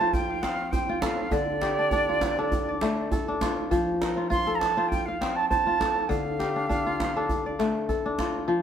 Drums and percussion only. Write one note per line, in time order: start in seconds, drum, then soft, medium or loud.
0.13 djembe bass medium
0.30 djembe slap soft
0.43 djembe slap medium
0.73 djembe bass medium
1.02 djembe slap medium
1.02 djembe tone medium
1.31 djembe bass medium
1.61 djembe slap medium
1.91 djembe bass medium
2.21 djembe slap medium
2.21 djembe tone medium
2.38 djembe slap soft
2.52 djembe bass medium
2.68 djembe slap soft
2.81 djembe slap medium
3.12 djembe bass medium
3.41 djembe slap medium
3.41 djembe tone medium
3.71 djembe bass medium
4.02 djembe slap medium
4.31 djembe bass medium
4.61 djembe slap medium
4.78 djembe slap soft
4.92 djembe bass medium
5.09 djembe slap soft
5.22 djembe slap medium
5.51 djembe bass medium
5.81 djembe slap medium
5.81 djembe tone medium
6.11 djembe bass medium
6.40 djembe slap medium
6.70 djembe bass medium
6.87 djembe slap soft
7.00 djembe slap medium
7.00 djembe tone medium
7.29 djembe bass medium
7.60 djembe slap medium
7.76 djembe slap soft
7.89 djembe slap soft
7.89 djembe bass medium
8.19 djembe slap medium
8.19 djembe tone medium